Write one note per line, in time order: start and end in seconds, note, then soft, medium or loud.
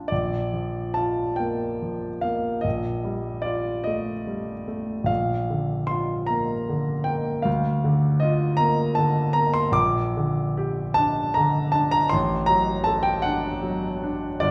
0.00 0.13 A#3 soft
0.00 0.13 D4 soft
0.00 0.13 F4 soft
0.08 2.61 A#1 soft
0.08 0.96 D5 medium
0.54 1.23 F3 soft
0.94 1.66 F4 soft
0.94 1.38 A5 medium
1.36 2.08 A#3 soft
1.36 2.23 G5 medium
1.82 2.49 F3 soft
2.21 2.65 A#3 soft
2.21 2.63 F5 medium
2.61 5.02 A#1 soft
2.61 3.43 D#5 medium
3.04 3.70 G3 soft
3.42 4.11 F4 soft
3.42 3.85 D5 medium
3.84 4.52 A3 soft
3.84 5.08 D#5 medium
4.27 4.93 G3 soft
4.68 5.09 A3 soft
5.04 7.40 A#1 soft
5.04 5.89 F5 medium
5.50 6.14 D3 soft
5.87 6.54 F4 soft
5.87 6.28 C6 medium
6.26 6.93 A#3 soft
6.26 7.07 A#5 medium
6.69 7.31 D3 soft
7.04 7.46 A#3 soft
7.04 7.45 G5 medium
7.42 9.72 D2 soft
7.42 8.21 F5 medium
7.84 8.45 D3 soft
8.20 8.84 F4 soft
8.20 8.59 D#5 medium
8.57 9.22 A#3 soft
8.57 8.97 A#5 medium
8.95 9.61 D3 soft
8.95 9.36 A5 medium
9.33 9.76 A#3 soft
9.33 9.55 A#5 medium
9.54 9.75 C6 medium
9.71 12.07 A#1 medium
9.71 10.97 D6 medium
10.17 10.83 D3 soft
10.57 11.22 G4 soft
10.94 11.61 D4 soft
10.94 11.36 A5 loud
11.34 11.99 D3 soft
11.34 11.75 A#5 medium
11.72 12.13 D4 soft
11.72 11.93 A5 medium
11.91 12.12 A#5 medium
12.09 14.38 A1 medium
12.09 12.49 C6 medium
12.46 13.09 F#3 soft
12.46 12.86 A#5 medium
12.84 13.47 A4 soft
12.84 13.04 A5 medium
13.03 13.23 G5 medium
13.22 13.87 D4 soft
13.22 13.62 F#5 medium
13.63 14.27 F#3 soft
14.03 14.43 D4 soft
14.40 14.51 G1 medium
14.40 14.51 D5 medium